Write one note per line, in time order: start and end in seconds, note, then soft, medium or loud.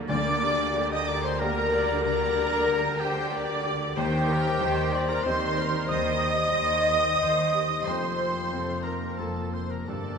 0.00 0.12 A3 medium
0.00 0.76 A#3 medium
0.00 1.85 D4 medium
0.00 0.12 F#4 medium
0.00 0.12 A4 medium
0.00 2.51 D5 medium
0.00 0.12 F#5 medium
0.00 1.01 D6 medium
0.08 3.93 D2 medium
0.08 2.00 D2 medium
0.08 1.04 D3 loud
0.08 2.03 D3 medium
0.08 3.93 D3 medium
0.08 3.80 G3 loud
0.08 3.80 A#4 loud
0.08 0.87 D5 loud
0.08 0.94 D5 loud
0.08 0.88 D5 loud
0.08 0.88 D6 loud
0.25 2.19 A#3 medium
0.42 1.71 G4 medium
0.75 1.79 D3 medium
0.75 1.40 G4 medium
0.75 1.39 A#4 medium
0.91 1.09 D#5 medium
0.91 1.09 D#5 loud
0.91 1.09 D#5 medium
0.91 1.23 G5 medium
0.91 1.09 D#6 loud
1.07 1.26 D5 loud
1.07 1.26 D5 medium
1.07 1.24 D5 loud
1.07 4.99 A#5 medium
1.07 1.24 D6 loud
1.24 1.41 C5 medium
1.24 1.42 C5 medium
1.24 1.40 C5 medium
1.24 2.83 G5 medium
1.24 1.41 C6 loud
1.40 3.93 A#3 medium
1.40 3.93 D4 medium
1.40 3.93 G4 medium
1.40 2.03 A#4 loud
1.40 1.72 A#4 medium
1.40 2.66 A#4 medium
1.40 2.04 A#4 loud
1.40 2.03 A#5 loud
1.71 2.35 G4 medium
1.71 2.03 D5 medium
2.03 3.99 D3 medium
2.03 3.02 A#4 loud
2.03 3.03 A#4 loud
2.03 2.99 A#4 loud
2.03 2.69 D5 medium
2.03 2.99 A#5 loud
2.20 3.99 A#3 medium
2.36 3.64 G4 medium
2.68 3.31 A#4 medium
2.68 3.01 A#4 medium
2.84 3.15 G5 medium
3.00 3.64 G4 medium
3.00 3.65 G4 medium
3.00 3.32 C5 medium
3.00 3.64 G5 loud
3.17 4.75 G5 medium
3.32 3.99 A#4 medium
3.32 3.96 D5 loud
3.65 4.27 G4 medium
3.96 4.53 D#2 medium
3.96 5.86 D#2 medium
3.96 5.89 D#3 medium
3.96 4.53 D#3 medium
3.96 7.82 G3 medium
3.96 5.04 G4 loud
3.96 5.10 G4 loud
3.96 5.11 G4 loud
3.96 7.82 C5 loud
3.96 4.29 C5 medium
3.96 5.04 G5 loud
4.12 6.05 C4 medium
4.29 5.56 G4 medium
4.29 4.61 A#4 medium
4.44 7.88 D#5 medium
4.60 5.17 D#2 medium
4.60 5.17 D#3 medium
4.60 5.64 D#3 medium
4.60 5.23 C5 medium
4.60 4.93 C5 medium
4.76 5.07 G5 medium
4.92 5.25 D5 medium
4.92 7.88 C6 medium
5.08 5.25 A#4 medium
5.08 5.26 A#4 medium
5.08 6.70 G5 medium
5.08 5.24 A#5 loud
5.23 5.82 D#2 medium
5.23 5.82 D#3 medium
5.23 7.82 C4 medium
5.23 7.82 D#4 medium
5.23 7.82 G4 medium
5.23 5.88 C5 loud
5.23 5.89 C5 loud
5.23 6.54 C5 medium
5.23 5.56 C5 medium
5.23 5.89 C5 loud
5.23 5.89 C6 loud
5.57 6.22 G4 medium
5.57 5.90 A#4 medium
5.73 7.69 D#4 medium
5.89 6.46 D#2 medium
5.89 6.47 D#3 medium
5.89 7.88 D#3 medium
5.89 6.22 C5 medium
5.89 7.81 D#5 loud
5.89 7.88 D#5 loud
5.89 7.82 D#5 loud
5.89 7.82 D#6 loud
6.06 8.01 C4 medium
6.22 7.52 G4 medium
6.22 7.20 D#5 medium
6.54 7.12 D#2 medium
6.54 7.12 D#3 medium
6.54 7.19 C5 medium
6.71 7.03 G5 medium
7.04 7.88 G5 medium
7.20 7.78 D#2 medium
7.20 7.78 D#3 medium
7.20 8.51 C5 medium
7.20 7.53 C5 medium
7.53 7.88 G4 medium
7.53 7.85 D#5 medium
7.70 7.88 D#4 soft
7.85 8.44 F1 medium
7.85 9.91 F2 medium
7.85 8.44 F2 medium
7.85 9.85 F2 medium
7.85 10.18 F3 medium
7.85 10.18 A#3 medium
7.85 8.85 C5 medium
7.85 8.83 C5 medium
7.85 8.52 C5 medium
7.85 8.87 C5 medium
7.85 8.84 C6 loud
8.02 9.91 C4 medium
8.19 9.52 F4 medium
8.52 9.11 F1 medium
8.52 9.11 F2 medium
8.52 9.61 C4 soft
8.52 8.85 A4 medium
8.52 9.17 C5 soft
8.69 9.01 F5 soft
8.83 9.88 A#3 medium
8.83 9.20 A#4 medium
8.83 9.18 A#4 medium
8.83 9.21 A#4 medium
8.83 9.18 A#5 medium
8.83 10.18 C6 soft
9.02 10.18 F5 soft
9.18 9.80 F1 medium
9.18 9.80 F2 medium
9.18 9.85 A#3 soft
9.18 9.85 F4 soft
9.18 9.53 A4 medium
9.18 9.56 A4 medium
9.18 9.54 A4 medium
9.18 9.91 C5 soft
9.18 9.53 A5 medium
9.52 10.18 F4 soft
9.52 9.70 C5 medium
9.52 9.68 C5 medium
9.52 9.72 C5 medium
9.52 9.70 C6 medium
9.69 9.91 C3 soft
9.69 9.89 A#4 soft
9.69 9.88 A#4 medium
9.69 9.88 A#4 soft
9.69 9.89 A#5 medium
9.87 10.18 G1 medium
9.87 10.18 G2 soft
9.87 10.18 G2 medium
9.87 10.18 A4 medium
9.87 10.18 D5 medium
9.87 10.18 A5 medium
10.06 10.18 A#3 soft